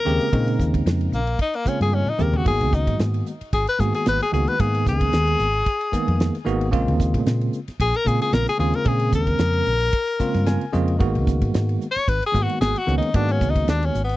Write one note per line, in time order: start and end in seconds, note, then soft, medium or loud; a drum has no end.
0.00 0.83 A#4 loud
0.05 0.18 D#2 medium
0.05 0.28 C#3 medium
0.05 0.28 G#3 medium
0.05 0.28 A#3 medium
0.05 0.28 C4 medium
0.05 0.28 G4 loud
0.05 hi-hat pedal medium
0.21 ride medium
0.32 0.61 A#2 medium
0.32 1.18 C#3 medium
0.32 1.18 G#3 medium
0.32 1.18 A#3 medium
0.32 1.19 C4 medium
0.32 1.19 D#4 medium
0.32 kick loud
0.32 ride medium
0.48 ride medium
0.59 0.81 D#2 medium
0.59 kick medium
0.59 snare soft
0.59 hi-hat pedal medium
0.74 kick medium
0.74 ride medium
0.86 1.08 F2 medium
0.86 snare loud
0.86 ride medium
1.01 ride medium
1.12 1.34 A#1 medium
1.12 1.40 A#3 medium
1.12 hi-hat pedal medium
1.27 ride medium
1.39 1.57 D#4 medium
1.39 kick medium
1.39 ride medium
1.54 1.69 A#3 medium
1.54 ride medium
1.65 2.09 C#3 medium
1.65 2.09 G#3 medium
1.65 2.10 A#3 medium
1.65 2.10 C4 medium
1.65 1.81 C#4 medium
1.65 2.10 F4 medium
1.65 muted fingered electric bass stroke soft
1.65 kick medium
1.65 hi-hat pedal medium
1.80 2.02 G2 medium
1.80 1.96 G#4 medium
1.80 ride medium
1.93 2.11 C#4 medium
1.93 high tom medium
2.07 2.24 D#4 medium
2.07 mid tom medium
2.18 2.48 D#2 medium
2.18 2.41 C#3 medium
2.18 2.41 G#3 medium
2.18 2.41 A#3 medium
2.18 2.41 C4 medium
2.18 2.41 G4 medium
2.18 2.38 A#4 medium
2.18 hi-hat pedal medium
2.18 mid tom medium
2.33 2.47 F#4 medium
2.33 floor tom medium
2.44 2.63 G#1 medium
2.44 3.31 D#3 medium
2.44 3.31 G#3 medium
2.44 3.31 A#3 medium
2.44 3.31 B3 medium
2.44 3.32 F#4 medium
2.44 2.76 G#4 medium
2.44 kick loud
2.44 ride medium
2.61 2.89 C#2 medium
2.61 ride medium
2.73 3.00 D#4 medium
2.73 kick medium
2.73 hi-hat pedal medium
2.87 2.97 G#2 medium
2.87 kick medium
2.87 ride medium
2.99 3.21 G#2 medium
2.99 snare loud
2.99 ride medium
3.14 ride medium
3.26 hi-hat pedal medium
3.41 muted fingered electric bass stroke soft
3.41 ride medium
3.53 3.65 G#1 medium
3.53 3.67 G#4 medium
3.53 kick medium
3.53 ride medium
3.67 3.81 B4 medium
3.67 ride medium
3.79 3.91 G#2 medium
3.79 4.23 D#3 medium
3.79 4.23 G#3 medium
3.79 4.23 A#3 medium
3.79 4.23 B3 medium
3.79 4.24 F#4 medium
3.79 3.93 G#4 medium
3.79 kick medium
3.79 hi-hat pedal medium
3.94 4.06 G#4 medium
3.94 snare soft
3.94 ride medium
4.06 4.18 G#1 loud
4.06 4.21 B4 loud
4.06 snare loud
4.06 ride medium
4.21 4.33 G#4 loud
4.21 snare soft
4.21 ride medium
4.32 4.45 C#2 medium
4.32 4.54 D#3 medium
4.32 4.54 G#3 medium
4.32 4.55 A#3 medium
4.32 4.55 B3 medium
4.32 4.55 F#4 medium
4.32 4.49 G#4 medium
4.32 hi-hat pedal medium
4.48 4.62 B4 loud
4.48 ride medium
4.59 4.88 G#2 medium
4.59 5.45 D#3 medium
4.59 5.45 G#3 medium
4.59 5.45 A#3 medium
4.59 5.45 B3 medium
4.59 4.86 G#4 loud
4.59 5.46 G#4 medium
4.59 kick loud
4.59 ride medium
4.75 ride medium
4.86 5.08 C#2 medium
4.86 6.44 G#4 loud
4.86 kick medium
4.86 hi-hat pedal medium
5.01 kick medium
5.01 ride medium
5.13 5.34 D#2 medium
5.13 snare loud
5.13 ride medium
5.28 ride medium
5.39 5.61 G#1 medium
5.39 hi-hat pedal medium
5.54 ride medium
5.66 kick medium
5.66 ride medium
5.81 ride medium
5.92 6.36 D#3 medium
5.92 6.36 G#3 medium
5.92 6.37 A#3 medium
5.92 6.37 B3 medium
5.92 6.37 G#4 medium
5.92 muted fingered electric bass stroke soft
5.92 kick medium
5.92 hi-hat pedal medium
6.08 6.29 F2 medium
6.08 ride medium
6.20 snare loud
6.20 ride medium
6.35 snare soft
6.35 ride medium
6.45 6.73 G#1 medium
6.45 6.67 D#3 medium
6.45 6.68 G#3 medium
6.45 6.68 A#3 medium
6.45 6.68 B3 medium
6.45 6.68 F#4 loud
6.45 hi-hat pedal medium
6.61 ride medium
6.71 6.89 A#1 medium
6.71 7.58 C#3 medium
6.71 7.58 G#3 medium
6.71 7.58 A#3 medium
6.71 7.59 C4 medium
6.71 7.59 F4 medium
6.71 kick loud
6.71 ride medium
6.88 7.16 D#2 medium
6.88 ride medium
7.00 kick medium
7.00 snare soft
7.00 hi-hat pedal medium
7.14 7.24 A#2 medium
7.14 kick medium
7.14 ride medium
7.26 7.48 A#2 medium
7.26 snare loud
7.26 ride medium
7.41 ride medium
7.53 hi-hat pedal medium
7.68 muted fingered electric bass stroke soft
7.68 snare soft
7.68 ride medium
7.80 7.91 A#1 medium
7.80 7.98 G#4 medium
7.80 kick medium
7.80 ride medium
7.94 8.09 A#4 loud
7.94 ride medium
8.05 8.18 A#2 medium
8.05 8.49 C#3 medium
8.05 8.50 G#3 medium
8.05 8.50 A#3 medium
8.05 8.50 C4 medium
8.05 8.50 F4 medium
8.05 8.21 G#4 medium
8.05 kick medium
8.05 hi-hat pedal medium
8.21 8.35 G#4 medium
8.21 snare soft
8.21 ride medium
8.33 8.45 A#1 medium
8.33 8.47 A#4 medium
8.33 snare loud
8.33 ride medium
8.47 8.59 G#4 loud
8.47 snare soft
8.47 ride medium
8.58 8.71 D#2 medium
8.58 8.81 C#3 medium
8.58 8.81 G#3 medium
8.58 8.81 A#3 medium
8.58 8.81 C4 medium
8.58 8.82 F4 medium
8.58 8.77 G#4 medium
8.58 hi-hat pedal medium
8.74 8.89 A#4 medium
8.74 ride medium
8.84 9.14 A#2 medium
8.84 9.71 C#3 medium
8.84 9.71 G#3 medium
8.84 9.72 A#3 medium
8.84 9.72 C4 medium
8.84 9.72 G#4 medium
8.84 9.13 G#4 medium
8.84 kick loud
8.84 ride medium
8.99 ride medium
9.12 9.35 D#2 medium
9.12 10.71 A#4 loud
9.12 kick medium
9.12 hi-hat pedal medium
9.27 kick medium
9.27 ride medium
9.39 9.61 F2 medium
9.39 snare loud
9.39 ride medium
9.53 ride medium
9.66 9.88 A#1 medium
9.66 hi-hat pedal medium
9.80 ride medium
9.93 kick medium
9.93 ride medium
10.07 ride medium
10.20 10.64 C#3 medium
10.20 10.64 G#3 medium
10.20 10.64 A#3 medium
10.20 10.64 C4 medium
10.20 10.64 F4 medium
10.20 muted fingered electric bass stroke soft
10.20 kick medium
10.20 hi-hat pedal medium
10.34 10.56 G2 medium
10.34 snare soft
10.34 ride medium
10.46 10.72 G#5 medium
10.46 snare loud
10.46 ride medium
10.61 ride medium
10.72 11.02 F2 medium
10.72 10.95 C#3 medium
10.72 10.95 G#3 medium
10.72 10.95 A#3 medium
10.72 10.95 C4 medium
10.72 10.95 F4 medium
10.72 10.98 D#5 medium
10.72 hi-hat pedal medium
10.88 ride medium
10.99 11.17 G#1 medium
10.99 11.85 D#3 medium
10.99 11.86 G#3 medium
10.99 11.86 A#3 medium
10.99 11.86 B3 medium
10.99 11.86 F#4 loud
10.99 kick loud
10.99 ride medium
11.15 11.43 C#2 medium
11.15 ride medium
11.27 kick medium
11.27 snare soft
11.27 hi-hat pedal medium
11.42 11.52 G#2 medium
11.42 kick medium
11.42 ride medium
11.54 11.76 G#2 medium
11.54 snare loud
11.54 ride medium
11.69 ride medium
11.81 hi-hat pedal medium
11.91 12.10 C#5 loud
11.96 muted fingered electric bass stroke soft
11.96 snare soft
11.96 ride medium
12.08 12.20 G#1 loud
12.08 12.25 B4 medium
12.08 kick medium
12.08 ride medium
12.23 12.44 G#4 loud
12.23 ride medium
12.32 12.46 G#2 medium
12.32 12.77 D#3 medium
12.32 12.77 G#3 medium
12.32 12.77 A#3 medium
12.32 12.77 B3 medium
12.32 12.78 F#4 medium
12.32 kick medium
12.32 hi-hat pedal medium
12.43 12.60 F#4 medium
12.49 ride medium
12.61 12.73 G#1 medium
12.61 12.80 G#4 medium
12.61 snare loud
12.61 ride medium
12.76 12.96 F#4 medium
12.76 ride medium
12.86 12.99 C#2 medium
12.86 13.09 D#3 medium
12.86 13.09 G#3 medium
12.86 13.09 A#3 medium
12.86 13.09 B3 medium
12.86 13.10 C#4 medium
12.86 hi-hat pedal medium
12.98 13.17 D#4 medium
13.02 ride medium
13.14 13.43 G#2 medium
13.14 14.00 D#3 medium
13.14 14.00 G#3 medium
13.14 14.00 A#3 medium
13.14 14.00 B3 medium
13.14 13.34 D4 medium
13.14 14.00 F#4 medium
13.14 kick loud
13.14 ride medium
13.29 13.52 C#4 medium
13.29 ride medium
13.41 13.63 C#2 medium
13.41 kick medium
13.41 hi-hat pedal medium
13.50 13.67 D#4 medium
13.55 kick medium
13.55 ride medium
13.68 13.89 D#2 medium
13.68 13.87 D4 medium
13.68 snare loud
13.68 ride medium
13.83 14.03 C#4 medium
13.83 ride medium
13.94 14.16 G#1 medium
13.94 hi-hat pedal medium
14.04 14.17 B3 medium
14.09 snare soft
14.09 ride medium